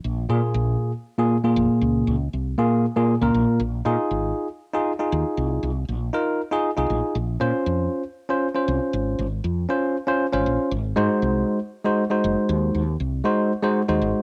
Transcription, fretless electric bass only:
X:1
M:7/8
L:1/16
Q:1/4=118
K:Fphr
V:1 name="Fretless electric bass" clef=bass
B,,,2 B,, z B,,,2 z6 F,,, z | D,,2 D,,2 C,,2 z4 z D,, B,,, z | B,,,2 B,, z A,,,2 z6 E,, z | C,,2 C,,2 B,,,2 z4 z C,, B,,, z |
B,,,2 B,, z F,,2 z6 C,, z | A,,,2 A,,,2 F,,2 z4 z A,,, B,,, z | A,,,2 A,, z C,,2 z6 G,,, z | E,,2 E,,2 C,,2 z4 z E,, A,,, z |]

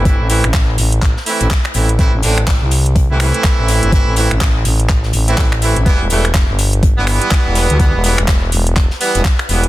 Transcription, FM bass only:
X:1
M:4/4
L:1/16
Q:"Swing 16ths" 1/4=124
K:Am
V:1 name="FM bass" clef=bass
G,,, A,,,2 A,,, z2 A,,,3 z2 A,,, z2 A,,,2 | A,,, A,,, A,,,3 C,,4 C,,2 z2 A,,,2 G,,,- | G,,, A,,,2 A,,, A,,,2 A,,,4 A,,,2 z3 A,,, | z E,,, E,,,3 G,,,4 G,,,2 z2 E,,,2 D,,- |
D,, E,,,2 E,,, z2 E,,,3 z2 E,,, z2 E,,,2 |]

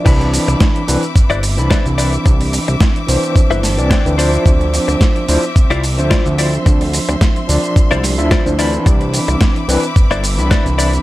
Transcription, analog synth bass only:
X:1
M:4/4
L:1/16
Q:"Swing 16ths" 1/4=109
K:C
V:1 name="Analog synth bass" clef=bass
C,,2 z C,, z2 C,, z G,,, G,,,2 C,, z C,,2 z | C,,2 z C,, z2 C,, z2 G,,,2 C,, z D,,2 z | D,,2 z D,, z2 D,, z C,, C,,2 D,, z D,,2 z | D,,2 z D,, z2 D,, z2 C,,2 D,, z D,,2 z |
C,,2 z C,, z2 C,, z G,,, G,,,2 C,, z C,,2 z |]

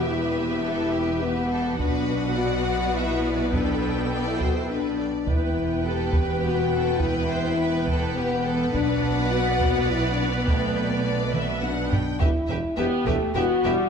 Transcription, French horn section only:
X:1
M:3/4
L:1/16
Q:1/4=104
K:Edor
V:1 name="French horn section"
E8 B,4 | D4 F4 E4 | D4- D E F E D4 | E4 G4 F4 |
E8 B,4 | D4 F4 (3E2 D2 B,2 | A,8 D4 | E4 G4 F4 |]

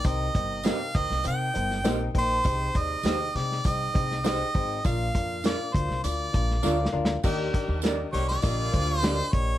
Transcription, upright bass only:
X:1
M:4/4
L:1/16
Q:1/4=100
K:Eb
V:1 name="Upright bass" clef=bass
C,,2 G,,,3 z D,, C,, C,2 G,,,2 B,,,2 B,,,2 | C,,2 E,,2 E,,2 C,2 C,,2 C,,4 A,,,2 | B,,,2 F,,3 z D,, C,, D,,2 B,,,2 D,,2 D,,2 | E,,2 z E,,3 C,,2 B,,,2 D,,4 B,,,2 |]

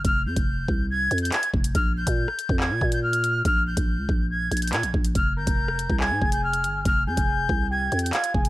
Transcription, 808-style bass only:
X:1
M:4/4
L:1/16
Q:1/4=141
K:Fm
V:1 name="808-style bass" clef=bass
F,,,2 F,, F,,,3 C,,4 F,,2 z2 F,,,2 | B,,,3 B,,2 z2 F,,2 B,, B,,6 | B,,,3 B,,,2 D,, B,,,4 B,,,2 B,, B,,, B,,,2 | F,,,2 G,,, F,,,4 C,,2 A,, F,,,4 G,,,2 |
F,,,2 F,, F,,,3 C,,4 F,,2 z2 F,,,2 |]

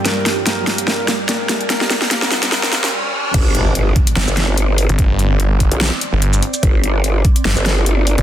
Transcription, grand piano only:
X:1
M:4/4
L:1/8
Q:"Swing 16ths" 1/4=146
K:Gm
V:1 name="Grand piano"
[B,B] z [B,B]2 [B,B] z [B,B]2 | [B,B] z [B,B] z [B,B] [B,B] z2 | z8 | z8 |
z8 |]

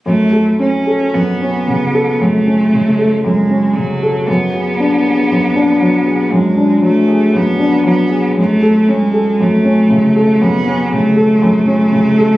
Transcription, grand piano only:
X:1
M:4/4
L:1/16
Q:1/4=59
K:F#m
V:1 name="Grand piano"
F,, A C A F,, C C, A F,, C C, A F,, C C, A | F,, G D G F,, D F, G F,, D F, G F,, D F, G | F,, A C A F,, C C, A F,, C C, A F,, C C, A |]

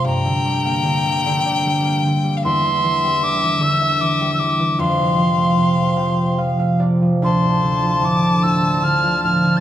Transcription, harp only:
X:1
M:3/4
L:1/16
Q:1/4=76
K:Gdor
V:1 name="Harp"
z12 | z12 | z6 g2 f f d2 | z12 |]
V:2 name="Harp" clef=bass
G,, D, G, B, D, G, D, d G, B, D, G, | E,, D, E, G, D, E, D, e E, G, D, E, | F,, C, F, A, C, F, C, c F, A, C, F, | D,, A,, D, F, A,, D, A,, A D, F, A,, D, |]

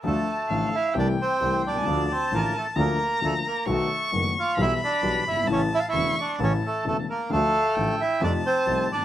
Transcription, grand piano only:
X:1
M:4/4
L:1/16
Q:1/4=132
K:Dm
V:1 name="Grand piano" clef=bass
[D,,D,F,A,F]2 z2 [A,,,A,,D,F,A,F]2 z2 [C,,C,E,A,E]2 z2 [C,,C,E,A,E]2 z/2 =B,,,/2 C,,/2 ^C,,/2 | [D,,D,F,A,F]2 z2 [A,,,A,,D,F,A,F]2 z2 [D,,D,F,B,F]2 z2 [D,,D,F,B,F]2 z2 | [=B,,,=B,,^D,A,=B,^F]2 z2 [^F,,,^F,,D,A,B,F]2 z2 [B,,,B,,E,G,B,G]2 z2 [B,,,B,,E,G,B,G]2 z/2 F,,,/2 G,,,/2 ^G,,,/2 | [A,,,A,,^C,E,A,E]2 z2 [E,,,E,,C,E,A,E]2 z2 [A,,,A,,C,E,A,E]2 z2 [E,,,E,,C,E,A,E]2 z2 |
[D,,D,F,A,F]2 z2 [A,,,A,,D,F,A,F]2 z2 [F,,C,F,A,_E]2 z2 [C,,C,F,A,E]2 z/2 G,,,/2 ^G,,,/2 z/2 |]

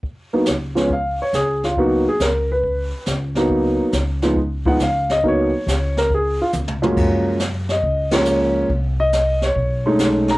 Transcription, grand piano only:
X:1
M:4/4
L:1/8
Q:"Swing" 1/4=139
K:C#mix
V:1 name="Grand piano"
z4 e c G E | F G A B3 z2 | z4 z f e d | c3 A G E z2 |
z3 d2 c3 | z _e2 c3 z a |]
V:2 name="Grand piano"
z [F,A,B,D] z [E,G,B,C] z4 | [F,A,B,D] z6 [F,A,B,D]- | [F,A,B,D]2 z [E,G,B,D] z [E,G,B,D] z2 | [F,A,B,D] z6 [F,,E,G,A,C]- |
[F,,E,G,A,C]2 z3 [E,G,A,C]3 | z4 z [G,=A,CD]3 |]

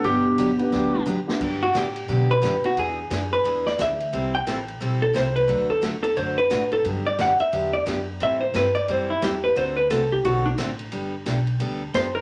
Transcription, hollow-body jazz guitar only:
X:1
M:4/4
L:1/8
Q:"Swing" 1/4=176
K:G
V:1 name="Hollow-body jazz guitar"
B,,6 z2 | z F G3 B2 F | ^G3 B2 d e2- | e g3 z A c B- |
B A z A c B2 A | z d f e2 d z2 | e c B d c E G B | c B A G F D z2 |
z6 c _B |]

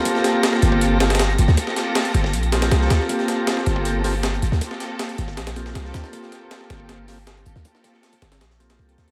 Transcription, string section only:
X:1
M:4/4
L:1/16
Q:1/4=158
K:Gm
V:1 name="String section"
[B,CFGA]12- [B,CFGA]2 [B,CFGA] z | [B,CFGA]8- [B,CFGA]2 z3 [B,CFGA]3 | [B,CFGA]12- [B,CFGA]2 [B,CFGA] z | [B,CFGA]8- [B,CFGA]2 z3 [B,CFGA]3 |
[B,CFGA]12- [B,CFGA]2 [B,CFGA] z | [B,CFGA]8- [B,CFGA]2 z3 [B,CFGA] [B,CFGA]2 |]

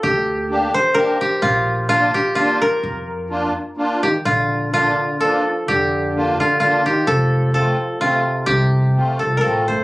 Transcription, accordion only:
X:1
M:3/4
L:1/8
Q:"Swing" 1/4=128
K:Bb
V:1 name="Accordion"
z2 [B,DG] z [B,DG] z | z2 [B,DF] z [B,DF] z | z2 [B,DF] z [B,DF] z | z2 [B,DF] z [B,DF] z |
z2 [B,DF] z [B,DF] z | z2 [A,CF] z [A,CF] z | z2 [A,CF] z [A,CF] z |]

